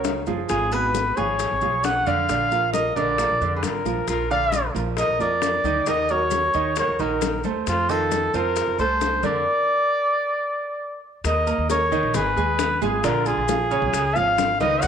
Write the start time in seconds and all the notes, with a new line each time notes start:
Already playing: C#2 C#3 C#4 F#4 A#4 C#5
0.04 high bongo, low bongo, high conga, maracas
0.26 F#1 F3 F4 G#4, high bongo, high conga, maracas
0.49 G#1 F4 G#4, high bongo, high conga, maracas
0.71 B2 B3 G#4 B4, high conga, maracas
0.94 high bongo, high conga, maracas
1.16 G#1 F3 F4 G#4 C#5, maracas
1.39 high bongo, high conga, maracas
1.51 G#1
1.61 B1 F3 F4 G#4, high conga, maracas
1.84 B4 F#5, high bongo, low bongo, high conga, maracas
2.06 F2 D3 D4 D5 F5, high conga, maracas
2.29 A#1 D3 D4 D5, high bongo, high conga, maracas
2.51 F3 F4 A#4, high bongo, high conga, maracas
2.73 A#4 D#5, high bongo, high conga, maracas
2.96 A#1 D3 D4 A#4 D5, maracas
3.18 F3 F4 A#4, high bongo, high conga, maracas
3.30 A#1
3.41 F2 D3 D4 D5, high bongo, high conga, maracas
3.56 G#4 B4
3.63 G#1 F4 A#4, high bongo, low bongo, high conga, maracas
3.85 A#1 F3 F4 A#4, high bongo, high conga, maracas
4.08 A#1 F4 A#4, high bongo, maracas
4.30 D3 D4 D5 F5, high conga, maracas
4.52 high bongo, high conga, maracas
4.75 A#1 F3 F4 A#4, high conga, maracas
4.97 A#4 D#5, high bongo, high conga, maracas
5.08 A#1
5.19 F2 F3 F4 A#4 D5, high conga, maracas
5.42 high bongo, low bongo, high conga, maracas
5.64 D2 D#3 D#4 D#5, high conga, maracas
5.86 D#2 D#3 D#4 A#4 D#5, high bongo, high conga, maracas
6.09 F#3 F#4 A#4 C#5, high bongo, high conga, maracas
6.31 high bongo, high conga, maracas
6.54 D#2 D#3 D#4 D#5, maracas
6.76 F#3 F#4 A#4 C#5, high bongo, high conga, maracas
6.88 D#2
6.99 A#1 D#3 D#4 F#4 A#4 D#5, high bongo, high conga, maracas
7.21 high bongo, low bongo, high conga, maracas
7.44 D#2 A3 A4 C5, high bongo, high conga, maracas
7.67 F2 C4 F4, high bongo, high conga, maracas
7.89 D#3 D#4 F4 A4 D#5, high conga, maracas
8.11 high bongo, high conga, maracas
8.34 F2 C4 F4 A#4 C5 A5, maracas
8.56 high bongo, high conga, maracas
8.67 F2
8.78 C2 A3 A4 C5, high conga, maracas
9.01 high bongo, low bongo, high conga, maracas
9.23 F2 D3 D4 A#4 D5, high conga, maracas
11.24 D#2 A#4 D#5, high bongo, high conga, maracas
11.47 A#3 A#4 A#5, high conga, maracas
11.58 D#2
11.70 A#4 C#5, high bongo, high conga, maracas
11.92 D#3 D#4 D#5, high bongo, high conga, low conga, maracas
12.03 A#1
12.14 G#1 G#4 B4, high bongo, high conga, low conga, maracas
12.37 D#2 G#3 G#4 G#5, high bongo, high conga, maracas
12.59 high bongo, low bongo, high conga, maracas
12.81 G#1 G#3 F4 G#4 G#5, high bongo, high conga, maracas
13.04 A#1 D3 D4 F4 A#4 D5, high bongo, high conga, maracas
13.26 F4 G#4, high conga, maracas
13.37 A#1
13.48 F3 F4 F5, high bongo, high conga, maracas
13.71 C#3 C#4 C#5, high bongo, high conga, maracas
13.82 B1
13.93 C#2, high bongo, high conga, maracas
14.15 G#1 F3 F4 C#5 F5, high bongo, high conga, maracas
14.38 high bongo, low bongo, high conga, maracas
14.60 C#2 D#3 D#4 B4 D#5, high bongo, high conga, maracas
14.82 D#2 D#5 F#5, high bongo, high conga, maracas